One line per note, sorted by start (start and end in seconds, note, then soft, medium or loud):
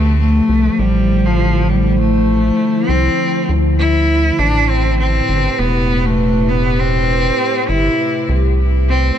0.00 0.41 D2 loud
0.00 0.34 C3 medium
0.00 4.39 D3 medium
0.00 4.39 F3 medium
0.00 0.19 A3 loud
0.00 9.18 A3 medium
0.00 1.24 G4 medium
0.19 0.81 A3 loud
0.40 4.39 C5 medium
0.49 0.70 C2 medium
0.75 2.51 A1 medium
0.75 1.27 G3 loud
0.75 5.83 E4 medium
1.26 1.71 F3 medium
1.69 1.98 G3 medium
1.99 2.90 A3 loud
2.89 3.09 C2 medium
2.89 3.49 C4 loud
3.49 4.31 D2 medium
3.79 4.40 E4 loud
4.39 5.21 A1 loud
4.39 9.18 A2 medium
4.39 4.70 D4 loud
4.69 4.98 C4 loud
4.82 9.18 B4 medium
4.95 9.18 C3 medium
4.95 5.61 C4 loud
4.95 9.18 G4 medium
5.29 5.50 G1 medium
5.59 7.31 E1 medium
5.59 6.07 B3 loud
6.06 6.51 A3 medium
6.49 6.81 B3 medium
6.79 7.71 C4 loud
7.69 7.89 G1 medium
7.69 8.29 E4 medium
8.29 9.11 C2 loud
8.89 9.17 C4 medium